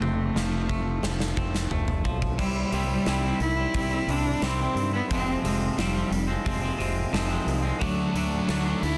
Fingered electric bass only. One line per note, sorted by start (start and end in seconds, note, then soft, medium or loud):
0.01 0.33 F1 medium
0.35 0.99 F1 medium
1.03 1.35 F1 medium
1.37 1.69 F1 medium
1.70 2.02 F1 medium
2.05 2.39 B1 medium
2.39 2.63 C2 medium
2.72 2.97 C2 medium
3.07 3.31 C2 medium
3.40 3.65 C2 medium
3.75 3.99 C2 medium
4.08 4.32 C2 medium
4.42 4.67 C2 medium
4.75 5.00 G2 medium
5.11 5.35 F1 medium
5.44 5.68 F1 medium
5.78 6.02 F1 medium
6.11 6.36 F1 medium
6.46 6.70 F1 medium
6.79 7.04 F1 medium
7.13 7.38 F1 medium
7.46 7.71 C2 medium
7.82 8.06 D2 medium
8.14 8.39 D2 medium
8.49 8.73 D2 medium
8.83 8.98 D2 medium